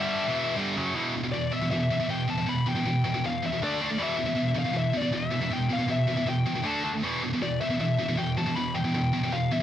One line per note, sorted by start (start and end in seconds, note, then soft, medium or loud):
0.00 0.27 G2 medium
0.00 0.28 D3 medium
0.00 0.28 G3 loud
0.00 0.52 E5 medium
0.29 0.56 E2 medium
0.29 0.56 B2 medium
0.29 0.57 E3 medium
0.57 0.75 G2 loud
0.57 0.75 D3 loud
0.57 0.76 G3 loud
0.77 0.94 F#2 medium
0.77 0.94 C#3 loud
0.77 0.95 F#3 medium
0.95 1.13 E2 medium
0.95 1.13 B2 medium
0.95 1.13 E3 medium
1.14 1.23 E2 medium
1.14 1.22 B2 medium
1.23 1.32 E2 medium
1.23 1.32 B2 medium
1.32 1.50 E2 medium
1.32 1.50 B2 medium
1.32 1.53 D5 medium
1.52 1.61 E2 medium
1.52 1.60 B2 medium
1.52 1.69 E5 medium
1.62 1.70 E2 medium
1.62 1.71 B2 medium
1.71 1.88 E2 medium
1.71 1.88 B2 medium
1.71 2.10 E5 medium
1.91 1.99 E2 medium
1.91 1.99 B2 medium
2.00 2.08 E2 medium
2.00 2.08 B2 medium
2.09 2.26 E2 medium
2.09 2.26 B2 medium
2.09 2.30 G5 medium
2.28 2.37 E2 medium
2.28 2.37 B2 medium
2.28 2.48 A5 medium
2.38 2.45 E2 medium
2.38 2.46 B2 medium
2.46 2.64 E2 medium
2.46 2.64 B2 medium
2.46 2.67 B5 loud
2.66 2.75 E2 medium
2.66 2.74 B2 medium
2.66 3.26 G5 medium
2.76 2.84 E2 medium
2.76 2.85 B2 medium
2.85 3.02 E2 medium
2.85 3.03 B2 medium
3.04 3.13 E2 medium
3.04 3.13 B2 medium
3.14 3.23 E2 medium
3.14 3.23 B2 medium
3.24 3.41 E2 medium
3.24 3.41 B2 medium
3.24 3.44 F5 medium
3.43 3.51 E2 medium
3.43 3.51 B2 medium
3.43 3.63 E5 medium
3.52 3.62 E2 medium
3.52 3.61 B2 medium
3.62 3.79 D3 medium
3.62 3.80 A3 medium
3.62 3.80 D4 loud
3.62 4.02 D5 medium
3.81 3.89 D3 medium
3.81 3.89 A3 medium
3.81 3.89 D4 medium
3.90 3.99 D3 medium
3.90 3.99 A3 medium
3.98 4.17 E2 medium
3.98 4.16 B2 medium
3.98 4.17 E3 medium
4.03 4.58 E5 medium
4.17 4.26 E2 medium
4.17 4.25 B2 medium
4.26 4.35 E2 medium
4.26 4.35 B2 medium
4.36 4.54 E2 medium
4.36 4.54 B2 medium
4.55 4.64 E2 medium
4.55 4.64 B2 medium
4.55 4.75 F5 medium
4.65 4.72 E2 medium
4.65 4.73 B2 medium
4.74 4.92 E2 medium
4.74 4.92 B2 medium
4.74 4.97 E5 medium
4.94 5.01 E2 medium
4.94 5.01 B2 medium
4.94 5.15 D5 medium
5.02 5.11 E2 medium
5.02 5.12 B2 medium
5.13 5.30 E2 medium
5.13 5.29 B2 medium
5.13 5.53 E5 medium
5.30 5.40 E2 medium
5.30 5.39 B2 medium
5.41 5.49 E2 medium
5.41 5.49 B2 medium
5.51 5.68 E2 medium
5.51 5.68 B2 medium
5.51 5.72 G5 medium
5.69 5.78 E2 medium
5.69 5.77 B2 medium
5.69 5.91 F5 medium
5.78 5.87 E2 medium
5.78 5.87 B2 medium
5.88 6.06 E2 medium
5.88 6.06 B2 medium
5.88 6.26 E5 medium
6.07 6.15 E2 medium
6.07 6.15 B2 medium
6.16 6.25 E2 medium
6.16 6.25 B2 medium
6.26 6.44 E2 medium
6.26 6.44 B2 medium
6.26 6.67 G5 medium
6.46 6.54 E2 medium
6.46 6.54 B2 medium
6.55 6.65 E2 medium
6.55 6.63 B2 medium
6.64 6.83 D3 medium
6.64 6.83 A3 medium
6.64 6.83 D4 medium
6.64 6.93 A5 medium
6.85 6.93 D3 medium
6.85 6.93 A3 medium
6.85 6.93 D4 medium
6.94 7.03 D3 medium
6.94 7.04 A3 medium
7.03 7.21 E2 medium
7.03 7.22 B2 medium
7.03 7.22 E3 medium
7.23 7.32 E2 medium
7.23 7.32 B2 medium
7.33 7.41 E2 medium
7.33 7.41 B2 medium
7.42 7.59 E2 medium
7.42 7.59 B2 medium
7.42 7.60 D5 medium
7.61 7.69 E2 medium
7.61 7.69 B2 medium
7.61 7.80 E5 medium
7.70 7.79 E2 medium
7.70 7.79 B2 medium
7.80 7.97 E2 medium
7.80 7.97 B2 medium
7.80 8.20 E5 medium
7.99 8.08 E2 medium
7.99 8.07 B2 medium
8.09 8.16 E2 medium
8.09 8.16 B2 medium
8.17 8.35 E2 medium
8.17 8.35 B2 medium
8.17 8.37 G5 medium
8.37 8.45 E2 medium
8.37 8.45 B2 medium
8.37 8.57 A5 medium
8.46 8.55 E2 medium
8.46 8.55 B2 medium
8.55 8.73 E2 medium
8.55 8.73 B2 medium
8.55 8.75 B5 loud
8.74 8.83 E2 medium
8.74 8.83 B2 medium
8.74 9.34 G5 medium
8.84 8.93 E2 medium
8.84 8.94 B2 medium
8.94 9.11 E2 medium
8.94 9.12 B2 medium
9.13 9.22 E2 medium
9.13 9.22 B2 medium
9.23 9.31 E2 medium
9.23 9.32 B2 medium
9.32 9.49 E2 medium
9.32 9.50 B2 medium
9.32 9.52 F5 medium
9.51 9.60 E2 medium
9.51 9.59 B2 medium
9.51 9.63 E5 medium